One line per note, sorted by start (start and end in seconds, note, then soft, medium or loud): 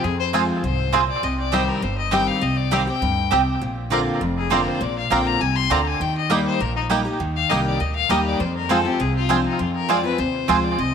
0.04 0.49 F2 medium
0.04 0.61 F2 medium
0.04 0.19 G#4 medium
0.20 0.28 C5 medium
0.33 0.62 F3 medium
0.33 0.62 G#3 medium
0.33 0.43 C4 medium
0.33 0.41 C4 medium
0.33 0.63 C4 medium
0.33 0.43 F4 medium
0.33 0.41 F4 medium
0.33 0.63 F4 medium
0.33 0.41 G#4 medium
0.33 0.43 C5 medium
0.33 0.43 G#5 medium
0.63 1.08 C2 medium
0.63 0.92 G#2 medium
0.63 1.05 C5 medium
0.93 1.22 A#2 medium
0.93 1.02 C4 medium
0.93 1.00 C4 medium
0.93 1.03 F4 medium
0.93 1.01 F4 medium
0.93 1.01 G#4 medium
0.93 1.03 C5 medium
0.93 1.03 G#5 medium
1.09 1.25 D5 medium
1.23 1.68 C2 medium
1.23 1.80 C3 medium
1.23 1.39 D#5 medium
1.39 1.55 D5 medium
1.52 1.81 D#3 medium
1.52 1.81 G3 medium
1.52 1.62 C4 medium
1.52 1.60 C4 medium
1.52 1.82 C4 medium
1.52 1.62 G4 medium
1.52 1.56 G4 medium
1.52 1.82 G4 medium
1.52 1.70 C5 medium
1.52 1.62 D#5 medium
1.52 1.62 G5 medium
1.68 1.85 A#4 medium
1.82 2.27 G1 medium
1.82 2.39 G2 medium
1.82 1.97 C5 medium
1.97 2.13 D#5 medium
2.11 2.41 D#3 medium
2.11 2.41 G3 medium
2.11 2.21 C4 medium
2.11 2.20 C4 medium
2.11 2.41 C4 medium
2.11 2.22 G4 medium
2.11 2.41 G4 loud
2.11 2.16 G4 medium
2.11 2.22 D#5 medium
2.11 2.29 G5 loud
2.11 2.22 G5 medium
2.27 2.43 F5 medium
2.41 2.87 C2 medium
2.41 2.99 C3 medium
2.41 2.59 D#5 medium
2.57 2.74 D5 medium
2.71 2.86 D#3 medium
2.71 2.87 G3 medium
2.71 2.81 C4 medium
2.71 2.87 C4 loud
2.71 2.79 C4 medium
2.71 2.81 G4 medium
2.71 2.86 G4 medium
2.71 2.76 G4 medium
2.71 2.82 D#5 medium
2.71 2.86 F5 medium
2.71 2.82 G5 medium
2.87 3.02 C4 soft
2.87 3.01 G4 medium
2.87 3.57 G5 loud
3.01 3.27 D2 medium
3.01 3.30 G2 medium
3.31 3.57 C2 medium
3.31 3.60 C3 medium
3.31 3.41 C4 medium
3.31 3.39 C4 medium
3.31 3.41 G4 medium
3.31 3.35 G4 medium
3.31 3.41 D#5 medium
3.31 3.41 G5 medium
3.61 4.07 A#1 medium
3.61 4.18 A#2 medium
3.90 4.19 D3 medium
3.90 4.20 A#3 medium
3.90 4.01 C4 medium
3.90 4.20 C4 medium
3.90 3.99 C4 medium
3.90 4.01 F4 medium
3.90 4.20 F4 loud
3.90 3.99 F4 medium
3.90 3.99 A#4 medium
3.90 4.01 D5 medium
3.90 4.01 A#5 medium
4.21 4.66 F1 medium
4.21 4.78 F2 medium
4.38 4.54 G#4 medium
4.50 4.79 D3 medium
4.50 4.79 A#3 medium
4.50 4.60 C4 medium
4.50 4.80 C4 medium
4.50 4.59 C4 medium
4.50 4.60 F4 medium
4.50 4.80 F4 medium
4.50 4.59 F4 medium
4.50 4.69 A#4 medium
4.50 4.59 A#4 medium
4.50 4.61 D5 medium
4.50 4.61 A#5 medium
4.68 4.84 C5 medium
4.81 5.03 A#1 medium
4.81 5.38 A#2 medium
4.81 4.97 D5 medium
4.98 5.14 F5 medium
5.10 5.36 A#1 loud
5.10 5.39 D3 medium
5.10 5.40 A#3 medium
5.10 5.20 C4 medium
5.10 5.40 C4 loud
5.10 5.18 C4 medium
5.10 5.20 F4 medium
5.10 5.40 F4 medium
5.10 5.18 F4 medium
5.10 5.19 A#4 medium
5.10 5.21 D5 medium
5.10 5.28 G5 medium
5.10 5.21 A#5 loud
5.27 5.42 A#5 loud
5.40 5.66 C2 medium
5.40 5.70 C3 medium
5.40 5.58 G#5 medium
5.56 5.73 C6 loud
5.70 5.96 D2 medium
5.70 5.99 D3 medium
5.70 5.80 C4 medium
5.70 5.78 C4 medium
5.70 5.80 F4 medium
5.70 5.78 F4 medium
5.70 5.78 A#4 medium
5.70 5.80 D5 medium
5.70 5.80 A#5 medium
5.70 5.89 A#5 medium
5.87 6.03 G#5 loud
6.00 6.45 D#2 medium
6.00 6.58 D#3 medium
6.00 6.16 G5 medium
6.17 6.33 D#5 medium
6.30 6.59 G3 medium
6.30 6.40 A#3 medium
6.30 6.59 A#3 medium
6.30 6.38 D#4 medium
6.30 6.59 D#4 medium
6.30 6.40 G4 medium
6.30 6.34 G4 medium
6.30 6.60 G4 loud
6.30 6.46 D5 medium
6.30 6.40 D#5 medium
6.30 6.40 G5 medium
6.47 6.63 C5 medium
6.60 7.05 A#1 medium
6.60 7.17 A#2 medium
6.60 6.75 A#4 medium
6.76 6.85 D#4 medium
6.90 7.05 G3 medium
6.90 6.99 A#3 medium
6.90 7.05 A#3 medium
6.90 6.97 D#4 medium
6.90 7.05 D#4 medium
6.90 7.00 G4 medium
6.90 6.93 G4 medium
6.90 7.04 G4 medium
6.90 7.00 D#5 medium
6.90 7.00 G5 loud
7.05 7.20 D#4 medium
7.05 7.19 G4 medium
7.20 7.43 D#2 medium
7.20 7.77 D#3 medium
7.36 7.51 F5 loud
7.49 7.76 C2 medium
7.49 7.79 G3 medium
7.49 7.59 A#3 medium
7.49 7.79 A#3 medium
7.49 7.57 D#4 medium
7.49 7.79 D#4 medium
7.49 7.60 G4 medium
7.49 7.53 G4 medium
7.49 7.80 G4 loud
7.49 7.65 D#5 medium
7.49 7.60 D#5 medium
7.49 7.60 G5 medium
7.66 7.82 D5 medium
7.80 8.05 D2 medium
7.80 8.37 A#2 medium
7.80 7.95 D#5 medium
7.96 8.12 F5 loud
8.09 8.35 D#2 medium
8.09 8.38 G3 medium
8.09 8.19 A#3 medium
8.09 8.39 A#3 medium
8.09 8.39 D#4 medium
8.09 8.17 D#4 medium
8.09 8.19 G4 medium
8.09 8.39 G4 medium
8.09 8.13 G4 medium
8.09 8.19 D#5 medium
8.09 8.26 D#5 medium
8.09 8.20 G5 medium
8.27 8.42 D5 medium
8.40 8.85 F2 medium
8.40 8.97 F2 medium
8.40 8.56 C5 medium
8.56 8.73 A#4 medium
8.69 8.84 F3 medium
8.69 8.85 G#3 medium
8.69 8.79 C4 medium
8.69 8.85 C4 loud
8.69 8.77 C4 medium
8.69 8.79 F4 medium
8.69 8.83 F4 medium
8.69 8.77 F4 medium
8.69 8.77 G#4 medium
8.69 8.88 A4 medium
8.69 8.79 C5 medium
8.69 8.79 G#5 medium
8.85 9.00 C4 soft
8.85 8.99 F4 medium
8.85 9.02 G4 medium
9.00 9.45 C2 medium
9.00 9.57 C3 medium
9.00 9.16 G#4 medium
9.16 9.32 F4 loud
9.29 9.58 F3 medium
9.29 9.58 G#3 medium
9.29 9.39 C4 medium
9.29 9.36 C4 medium
9.29 9.58 C4 medium
9.29 9.45 D4 medium
9.29 9.39 F4 medium
9.29 9.58 F4 medium
9.29 9.37 F4 medium
9.29 9.37 G#4 medium
9.29 9.39 C5 loud
9.29 9.39 G#5 medium
9.46 9.61 D#4 medium
9.59 10.16 F2 medium
9.59 10.04 F2 medium
9.59 9.74 F4 medium
9.75 9.92 A#4 medium
9.89 10.04 F3 medium
9.89 10.04 G#3 medium
9.89 9.98 C4 medium
9.89 9.96 C4 medium
9.89 10.04 C4 medium
9.89 9.98 F4 medium
9.89 9.97 F4 medium
9.89 10.02 F4 medium
9.89 9.97 G#4 medium
9.89 9.99 C5 medium
9.89 10.05 D5 loud
9.89 9.99 G#5 medium
10.03 10.19 C4 medium
10.03 10.18 F4 medium
10.03 10.21 B4 loud
10.18 10.44 D#2 medium
10.18 10.76 C3 medium
10.18 10.66 C5 medium
10.48 10.74 D2 medium
10.48 10.77 F3 medium
10.48 10.77 G#3 medium
10.48 10.58 C4 medium
10.48 10.56 C4 medium
10.48 10.78 C4 medium
10.48 10.58 F4 medium
10.48 10.56 F4 medium
10.48 10.78 F4 medium
10.48 10.56 G#4 medium
10.48 10.58 C5 medium
10.48 10.59 G#5 medium
10.64 10.81 D5 medium
10.78 10.94 C2 medium
10.78 10.94 C3 medium
10.78 10.94 D#5 medium